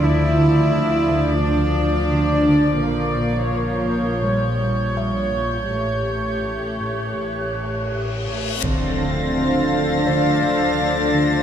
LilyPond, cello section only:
\new Staff \with { instrumentName = "Cello section" } { \time 4/4 \key a \phrygian \tempo 4 = 84 e'2 d'2 | bes2 g2 | a2. r8 a8 | \key d \minor c'2 d'2 | }